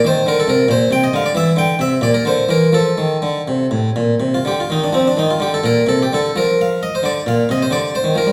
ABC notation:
X:1
M:12/8
L:1/16
Q:3/8=87
K:Bb
V:1 name="Harpsichord"
c2 B A B2 c2 g e f d =e2 g2 e2 d B c2 B2 | A12- A F G F E D C D E F G A | B2 A G A2 B2 f2 e c d2 f2 e c d2 c2 B2 |]
V:2 name="Harpsichord" clef=bass
E,2 D,2 C,2 B,,2 C,2 D,2 =E,2 D,2 C,2 B,,2 D,2 E,2 | F,2 E,2 D,2 C,2 A,,2 B,,2 C,2 D,2 E,2 F,2 E,2 D,2 | B,,2 C,2 D,2 F,6 D,2 B,,2 C,2 D,3 E, F, G, |]